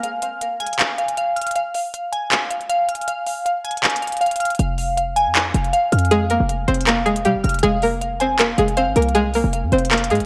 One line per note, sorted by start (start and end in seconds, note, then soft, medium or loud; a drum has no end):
0.00 0.04 F5 medium
0.00 0.22 F5 medium
0.00 0.60 G#5 loud
0.00 0.80 F6 medium
0.00 closed hi-hat medium
0.22 0.40 F5 medium
0.22 closed hi-hat medium
0.42 0.79 F5 medium
0.42 closed hi-hat medium
0.60 1.55 G#5 loud
0.60 closed hi-hat medium
0.67 closed hi-hat medium
0.73 closed hi-hat medium
0.80 0.97 F5 medium
0.80 clap loud
0.80 closed hi-hat medium
0.99 1.17 F5 medium
0.99 closed hi-hat soft
1.09 closed hi-hat medium
1.18 1.54 F5 medium
1.18 closed hi-hat medium
1.36 1.55 F6 medium
1.36 closed hi-hat medium
1.42 closed hi-hat medium
1.47 closed hi-hat medium
1.51 closed hi-hat medium
1.56 1.73 F5 medium
1.56 closed hi-hat medium
1.74 1.92 F5 medium
1.74 open hi-hat medium
1.94 2.30 F5 medium
1.94 closed hi-hat medium
2.12 3.07 G#5 medium
2.12 closed hi-hat medium
2.31 2.49 F5 medium
2.31 clap loud
2.31 closed hi-hat medium
2.50 2.68 F5 medium
2.50 closed hi-hat medium
2.61 closed hi-hat soft
2.69 3.06 F5 loud
2.69 closed hi-hat medium
2.88 3.83 F6 medium
2.88 closed hi-hat medium
2.95 closed hi-hat medium
3.01 closed hi-hat soft
3.07 3.25 F5 medium
3.07 closed hi-hat medium
3.26 3.44 F5 medium
3.26 open hi-hat medium
3.45 3.82 F5 medium
3.45 closed hi-hat medium
3.64 4.59 G#5 medium
3.64 closed hi-hat soft
3.71 closed hi-hat medium
3.77 closed hi-hat medium
3.83 4.01 F5 medium
3.83 clap loud
3.83 closed hi-hat medium
3.90 closed hi-hat medium
3.96 closed hi-hat medium
4.02 4.20 F5 medium
4.02 closed hi-hat soft
4.08 closed hi-hat medium
4.12 closed hi-hat medium
4.17 closed hi-hat medium
4.21 4.58 F5 loud
4.21 closed hi-hat soft
4.26 closed hi-hat medium
4.31 closed hi-hat medium
4.36 closed hi-hat medium
4.40 4.59 F6 medium
4.40 closed hi-hat medium
4.45 closed hi-hat medium
4.51 closed hi-hat medium
4.55 closed hi-hat soft
4.59 5.28 F1 loud
4.59 4.77 F5 medium
4.59 closed hi-hat medium
4.78 4.96 F5 medium
4.78 open hi-hat medium
4.97 5.34 F5 medium
4.97 closed hi-hat medium
5.16 6.11 G#5 loud
5.16 closed hi-hat medium
5.26 5.53 F2 loud
5.35 5.53 F5 medium
5.35 clap loud
5.35 closed hi-hat medium
5.54 5.73 F1 loud
5.54 5.72 F5 medium
5.54 closed hi-hat medium
5.64 closed hi-hat soft
5.73 6.10 F5 medium
5.73 closed hi-hat medium
5.92 6.38 F2 loud
5.92 6.87 F6 medium
5.92 closed hi-hat medium
5.99 closed hi-hat medium
6.05 closed hi-hat soft
6.11 6.26 G#3 medium
6.11 6.26 G#4 loud
6.11 6.29 F5 medium
6.11 closed hi-hat medium
6.30 6.67 A#3 medium
6.30 6.66 A#4 medium
6.30 6.48 F5 medium
6.30 closed hi-hat medium
6.40 6.67 F1 loud
6.49 6.86 F5 medium
6.49 closed hi-hat medium
6.68 7.27 F1 loud
6.68 6.83 C4 medium
6.68 6.83 C5 medium
6.68 closed hi-hat medium
6.75 closed hi-hat medium
6.81 closed hi-hat medium
6.87 7.02 A#3 medium
6.87 7.02 A#4 medium
6.87 7.05 F5 medium
6.87 clap loud
6.87 closed hi-hat medium
7.06 7.21 G#3 medium
7.06 7.21 G#4 medium
7.06 7.24 F5 medium
7.06 closed hi-hat soft
7.16 closed hi-hat medium
7.25 7.37 C3 loud
7.25 7.61 G3 medium
7.25 7.61 G4 medium
7.25 7.62 F5 medium
7.25 closed hi-hat medium
7.35 7.44 F1 loud
7.44 7.62 F1 loud
7.44 7.63 F6 medium
7.44 closed hi-hat medium
7.49 closed hi-hat medium
7.54 closed hi-hat medium
7.59 closed hi-hat medium
7.63 8.54 F1 loud
7.63 7.78 G#3 loud
7.63 7.78 G#4 loud
7.63 7.81 F5 medium
7.63 closed hi-hat medium
7.82 8.19 A#3 medium
7.82 8.18 A#4 medium
7.82 8.00 F5 medium
7.82 open hi-hat medium
8.01 8.37 F5 medium
8.01 closed hi-hat medium
8.20 8.36 C4 medium
8.20 8.35 C5 medium
8.20 9.15 G#5 medium
8.20 closed hi-hat medium
8.39 8.54 A#3 medium
8.39 8.54 A#4 medium
8.39 8.57 F5 medium
8.39 clap loud
8.39 closed hi-hat medium
8.58 8.89 F1 loud
8.58 8.73 G#3 medium
8.58 8.73 G#4 medium
8.58 8.76 F5 medium
8.58 closed hi-hat medium
8.68 closed hi-hat soft
8.77 8.92 C4 medium
8.77 8.92 C5 medium
8.77 9.14 F5 loud
8.77 closed hi-hat medium
8.87 8.95 G#1 loud
8.96 9.42 C2 loud
8.96 9.11 A#3 medium
8.96 9.11 A#4 medium
8.96 9.91 F6 medium
8.96 closed hi-hat medium
9.02 closed hi-hat medium
9.09 closed hi-hat soft
9.15 9.30 G#3 medium
9.15 9.30 G#4 loud
9.15 9.33 F5 medium
9.15 closed hi-hat medium
9.34 9.71 A#3 medium
9.34 9.70 A#4 medium
9.34 9.52 F5 medium
9.34 open hi-hat medium
9.44 9.65 F1 loud
9.53 9.90 F5 medium
9.53 closed hi-hat medium
9.63 9.71 F2 loud
9.72 10.11 F1 loud
9.72 9.87 C4 medium
9.72 9.87 C5 medium
9.72 closed hi-hat soft
9.78 closed hi-hat medium
9.85 closed hi-hat medium
9.91 10.06 A#3 medium
9.91 10.05 A#4 medium
9.91 10.09 F5 medium
9.91 clap loud
9.91 closed hi-hat medium
9.97 closed hi-hat medium
10.04 closed hi-hat medium
10.10 10.22 G#2 loud
10.10 10.26 G#3 medium
10.10 10.25 G#4 medium
10.10 10.26 F5 medium
10.10 closed hi-hat soft
10.15 closed hi-hat medium
10.20 10.26 F1 loud
10.20 closed hi-hat medium